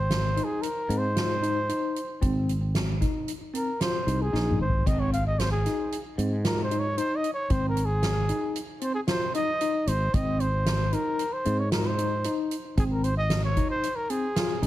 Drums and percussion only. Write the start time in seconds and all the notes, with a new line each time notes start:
0.10 snare, closed hi-hat
0.37 closed hi-hat
0.63 closed hi-hat
0.90 closed hi-hat
1.17 snare, closed hi-hat
1.43 closed hi-hat
1.69 closed hi-hat
1.96 closed hi-hat
2.22 kick, closed hi-hat
2.49 closed hi-hat
2.75 snare, closed hi-hat
3.01 kick, snare, closed hi-hat
3.28 closed hi-hat
3.55 closed hi-hat
3.81 snare, closed hi-hat
4.08 closed hi-hat
4.34 snare
4.51 mid tom
4.69 floor tom
4.87 kick, closed hi-hat, crash
5.13 closed hi-hat
5.39 snare, closed hi-hat
5.66 snare, closed hi-hat
5.92 closed hi-hat
6.19 closed hi-hat
6.45 snare, closed hi-hat
6.71 closed hi-hat
6.98 closed hi-hat
7.24 closed hi-hat
7.50 kick, closed hi-hat
7.77 closed hi-hat
8.03 snare, closed hi-hat
8.29 closed hi-hat
8.55 closed hi-hat
8.81 closed hi-hat
9.07 snare, closed hi-hat
9.34 closed hi-hat
9.61 closed hi-hat
9.87 closed hi-hat
10.14 kick, closed hi-hat
10.40 closed hi-hat
10.66 snare, closed hi-hat
10.93 closed hi-hat
11.19 closed hi-hat
11.45 closed hi-hat
11.72 snare, closed hi-hat
11.98 closed hi-hat
12.24 closed hi-hat
12.51 closed hi-hat
12.77 kick, closed hi-hat
13.04 closed hi-hat
13.30 snare, closed hi-hat
13.57 kick, closed hi-hat
13.83 closed hi-hat
14.10 closed hi-hat
14.36 snare, closed hi-hat
14.63 closed hi-hat